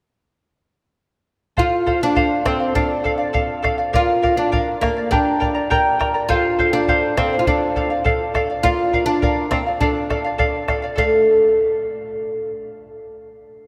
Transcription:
1.57 F4 A4 C5 F5, bombo low
1.86 A4 C5 F5, bombo low
2.01 D4 C5 F5
2.16 A4 C5 F5, bombo low
2.46 C4 A4 C5 F5, bombo rim, bombo low
2.60 C5 F5
2.75 D4 A4 D5 F5, bombo low
3.04 A4 D5 F5, bombo low
3.18 D5 F5
3.33 A4 D5 F5, bombo low
3.62 A4 D5 F5, bombo rim, bombo low
3.78 D5 F5
3.93 F4 A#4 D5 F5, bombo low
4.22 A#4 D5 F5, bombo low
4.36 D4 D5 F5
4.52 A#4 D5 F5, bombo low
4.81 A#3 A#4 D5 F5, bombo rim, bombo low
4.97 D5 F5
5.11 D4 G4 A#4 D5 G5 A#5, bombo low
5.40 A#4 D5 G5 A#5, bombo low
5.54 A#4 D5 A#5
5.70 G4 A#4 D5 G5 A#5, bombo low
5.99 A#4 D5 G5 A#5, bombo rim, bombo low
6.14 A#4 D5 A#5
6.29 F4 A4 C5 F5, bombo low
6.58 A4 C5 F5, bombo low
6.73 D4 C5 F5
6.88 A4 C5 F5, bombo low
7.17 C4 A4 C5 F5, bombo rim, bombo low
7.33 C5 F5
7.39 F4
7.47 D4 A4 D5 F5, bombo low
7.76 A4 D5 F5, bombo low
7.90 D5 F5
8.04 A4 D5 F5, bombo low
8.34 A4 D5 F5, bombo rim, bombo low
8.50 D5 F5
8.63 F4 A#4 D5 F5, bombo low
8.93 A#4 D5 F5, bombo low
9.06 D4 D5 F5
9.22 A#4 D5 F5, bombo low
9.51 C4 A#4 D5 F5, bombo rim, bombo low
9.67 D5 F5
9.81 D4 A4 D5 F5, bombo low
10.10 A4 D5 F5, bombo rim, bombo low
10.24 D5 F5
10.38 A4 D5 F5, bombo low
10.68 A4 D5 F5, bombo rim, bombo low
10.82 D5 F5
10.96 A3 A4 D5 F5, bombo low

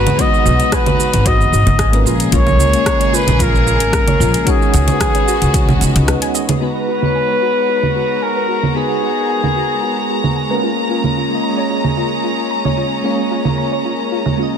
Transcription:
Already playing: B2 G#3 B3 D#4 F#4 B4 C#5 A#5
0.07 closed hi-hat, low conga, shaker
0.17 G#3 B3 D#4 F#4 D#5, kick, closed hi-hat, shaker
0.21 B4
0.34 shaker
0.45 B1 F#4, shaker
0.56 G#3 B3 D#4, closed hi-hat
0.61 F#4 B4, shaker
0.72 B4 G#5, kick, cross-stick, closed hi-hat, shaker
0.86 B4, closed hi-hat, low conga, shaker
0.99 F#4, shaker
1.14 G#1, closed hi-hat, shaker
1.26 F#4 D#5, kick, closed hi-hat, shaker
1.40 F#1, shaker
1.52 G#1 F#4, shaker
1.66 G#1, closed hi-hat, low conga, shaker
1.79 G#5, kick, cross-stick, closed hi-hat, shaker
1.92 G#3 A#3 C#4 F4 A#4 B4, closed hi-hat, shaker
2.05 A#1 C#3 A#3 F4 G#4, shaker
2.20 closed hi-hat, shaker
2.31 A#1 G#3 A#3 C#4 F4 A#4 C#5, kick, closed hi-hat, shaker
2.47 low conga, shaker
2.59 C#2 F4, shaker
2.70 G#3 A#3 C#4, closed hi-hat
2.74 F4 D#5, shaker
2.86 A#5, kick, cross-stick, closed hi-hat, shaker
3.00 C#5, closed hi-hat, shaker
3.13 F4 B4, shaker
3.27 A#1, closed hi-hat, low conga, shaker
3.39 F4 A#4, kick, closed hi-hat, shaker
3.55 shaker
3.66 F4, shaker
3.80 G#1, closed hi-hat, shaker
3.93 A#5, kick, cross-stick, closed hi-hat, shaker
4.08 C#5, closed hi-hat, low conga, shaker
4.20 A#1 F4, shaker
4.34 closed hi-hat, shaker
4.45 D#3 G#3 B3 C#4 D#4 F#4 C#5, kick, closed hi-hat, shaker
4.50 G#4
4.62 shaker
4.74 C#2 F#4, closed hi-hat, shaker
4.85 G#3 C#4 D#4, closed hi-hat, low conga, shaker
4.90 F#4 B4
5.00 G#5, kick, cross-stick, closed hi-hat, shaker
5.15 C#5, closed hi-hat, shaker
5.28 F#4, shaker
5.42 C#2, closed hi-hat, shaker
5.54 F#4, kick, closed hi-hat, shaker
5.68 B1, low conga, shaker
5.77 G#3 C#4 D#4
5.81 C#2 F#4 D#5 F#5, closed hi-hat, shaker
5.96 C#2, closed hi-hat, shaker
6.08 B4, cross-stick, closed hi-hat, shaker
6.22 G#5, closed hi-hat, shaker
6.35 D#5, shaker
6.49 G#4, closed hi-hat, low conga, shaker
6.60 G#3 B3 D#4 F#4 B4 A#5
6.88 F#4
6.98 G#3 B3 D#4
7.02 F#4 C#5, low conga
7.15 G#5
7.29 B4
7.42 F#4
7.69 F#4
7.83 low conga
7.96 F#4
8.22 A#4 G#5
8.36 B4
8.48 F#4
8.63 low conga
8.74 G#3 B3 D#4 F#4 G#4 B4
9.03 F#4
9.14 G#3 B3 D#4
9.19 F#4 A#4
9.29 G#5
9.43 B4, low conga
9.56 F#4
9.83 F#4
10.10 F#4
10.24 low conga
10.36 G#5
10.50 G#3 A#3 C#4 F4 A#4 B4
10.63 C#4 F4
10.88 G#3 A#3 C#4 F4 A#4
11.04 low conga
11.17 F4
11.28 G#3 A#3 C#4
11.33 F4 D#5
11.43 A#5
11.58 C#5
11.70 F4
11.84 low conga
11.97 F4
12.24 F4
12.51 A#5
12.65 C#5, low conga
12.77 F4
13.02 G#3 A#3 C#4 F4 C#5
13.31 F4
13.42 G#3 A#3 C#4, low conga
13.47 F4 A#4
13.58 A#5
13.72 C#5
13.85 F4
14.12 F4
14.26 low conga
14.36 G#3 A#3 C#4 F4
14.41 F4 D#5

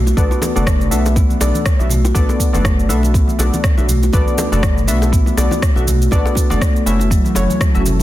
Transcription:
Already playing: B1
0.06 F#4, low bongo, cabasa
0.17 B1 B3 D4 F#4 A4 B4 D5, kick, muted conga, high conga, cabasa
0.31 B3, low bongo, cabasa
0.42 high bongo, high conga, cabasa
0.55 F#1 A3 B3 D4 F#4 A4 D5, low bongo, muted conga, low conga, cabasa
0.66 B3, kick, cross-stick, high conga, cabasa
0.80 low conga, cabasa
0.91 B1 A3 B3 D4 F#4 A4 E5, low bongo, cabasa
1.05 F#4, high bongo, muted conga, cabasa
1.16 B3, kick, low bongo, cabasa
1.30 high conga, cabasa
1.40 B1 B3 D4 F#4 A4 D5, high bongo, low bongo, muted conga, cabasa
1.54 high conga, cabasa
1.66 kick, cross-stick, cabasa
1.79 B1 B3 D4 F#4 A4 E5, low bongo, muted conga, cabasa
1.90 A3, high conga, low conga, cabasa
2.04 F#4, low bongo, cabasa
2.15 B1 B3 D4 F#4 A4 B4 D5, kick, muted conga, cabasa
2.29 B3, high bongo, low bongo, cabasa
2.40 kick, cabasa
2.53 F#1 A3 B3 D4 F#4 A4 D5, high bongo, muted conga, high conga, cabasa
2.65 B3, kick, cross-stick, low bongo, cabasa
2.79 cabasa
2.89 B1 A3 B3 D4 F#4 A4 E5, low bongo, cabasa
3.03 F#4, muted conga, cabasa
3.14 B3, kick, low bongo, cabasa
3.28 high conga, cabasa
3.39 B1 B3 D4 F#4 A4 D5, high bongo, muted conga, cabasa
3.54 low bongo, high conga, cabasa
3.64 kick, cross-stick, cabasa
3.78 B1 B3 D4 F#4 A4 E5, low bongo, muted conga, cabasa
3.88 A3, high conga, low conga, cabasa
4.03 F#4, low bongo, cabasa
4.13 B1 B3 D4 F#4 A4 B4 D5, kick, muted conga, high conga, cabasa
4.28 B3, cabasa
4.38 high bongo, low bongo, high conga, cabasa
4.52 F#1 A3 B3 D4 F#4 A4 D5, muted conga, low conga, cabasa
4.63 B3, kick, cross-stick, low bongo, high conga, cabasa
4.76 low conga, cabasa
4.87 B1 A3 B3 D4 F#4 A4 E5, low bongo, cabasa
5.02 F#4, high bongo, muted conga, cabasa
5.12 B3, kick, cabasa
5.26 low bongo, high conga, cabasa
5.37 B1 B3 D4 F#4 A4 D5, high bongo, muted conga, cabasa
5.51 low bongo, high conga, cabasa
5.62 kick, cross-stick, cabasa
5.76 B1 B3 D4 F#4 A4 E5, low bongo, muted conga, cabasa
5.87 A3, high conga, low conga, cabasa
6.01 F#4, cabasa
6.11 B1 B3 D4 F#4 A4 B4 D5, kick, low bongo, muted conga, cabasa
6.26 B3, high bongo, cabasa
6.35 kick, low bongo, cabasa
6.50 F#1 A3 B3 D4 F#4 A4 D5, high bongo, muted conga, high conga, cabasa
6.61 B3, kick, cross-stick, low bongo, cabasa
6.76 cabasa
6.86 F#1 A3 C#4 E4 F#4 E5, cabasa
7.00 F#4, low bongo, muted conga, cabasa
7.11 F#3 F#4 E5 A5 C#6, kick, low bongo, cabasa
7.25 high conga, cabasa
7.35 F#1 A3 C#4 E4 F#4 C#5, high bongo, low bongo, muted conga, cabasa
7.50 high conga, cabasa
7.61 kick, cross-stick, low bongo, cabasa
7.74 F#1 A3 C#4 E4 F#4 E5, muted conga, cabasa
7.85 E3, high conga, low conga, cabasa
7.99 low bongo

